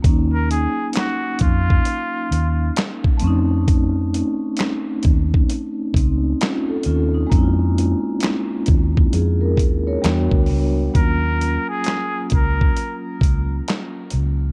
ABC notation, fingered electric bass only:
X:1
M:4/4
L:1/16
Q:"Swing 16ths" 1/4=66
K:Ebm
V:1 name="Fingered electric bass" clef=bass
E,,3 z3 F,,2 z2 E,,2 z2 F,,2- | F,,3 z3 E,,2 z2 D,,2 z2 E,,2 | F,,3 z3 E,,2 F,,2 E,,2 =E,, =D,, _D,,2 | E,,3 z3 D,,2 z2 D,,2 z2 D,,2 |]